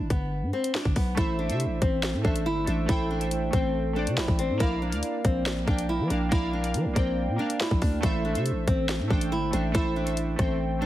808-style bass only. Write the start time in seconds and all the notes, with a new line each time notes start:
0.10 G1
0.42 G2
0.85 G1
0.96 B1
1.17 A1
1.50 C3
1.66 A1
1.82 A1
2.14 A2
2.25 A1
2.46 G1
2.67 A1
2.89 A1
3.53 A1
4.07 C3
4.18 A1
4.28 A1
4.50 A2
4.60 A#1
4.93 D2
5.25 A#1
5.46 A1
5.57 A#1
5.68 A#1
6.00 F3
6.10 A#1
6.32 A#1
6.75 F3
6.85 A#1
6.96 A#1
7.28 A#2
7.71 A#1
7.82 D2
8.03 A1
8.35 C3
8.51 A1
8.68 A1
9.00 A2
9.10 A1
9.32 G1
9.53 A1
9.75 A1
10.39 A1